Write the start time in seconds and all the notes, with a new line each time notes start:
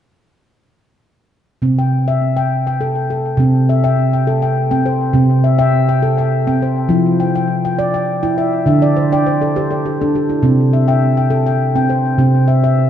1.62 C3 C4
1.79 G5
2.08 E5
2.37 G5
2.67 G5
2.81 A4
3.10 A4
3.37 C3 C4
3.69 E5
3.84 E5 G5
4.13 G5
4.27 A4
4.42 G5
4.71 C4 G5
4.86 C5
5.13 C3 C4
5.44 E5
5.58 E5 G5
5.89 G5
6.03 A4
6.18 G5
6.47 C4 G5
6.62 C5
6.89 F3 E4
7.20 G5
7.35 G5
7.65 G5
7.79 D5
7.94 G5
8.23 E4 G5
8.38 E5
8.66 D3 D4 E5
8.82 D5
8.96 C5
9.12 D5 G5
9.26 C5
9.42 A4
9.56 G4 C5
9.71 A4
9.86 G4
10.01 D4 A4
10.15 G4
10.30 E4
10.43 C3 C4
10.73 E5
10.88 E5 G5
11.17 G5
11.30 A4
11.46 G5
11.76 C4 G5
11.90 C5
12.18 C3 C4
12.48 E5
12.64 E5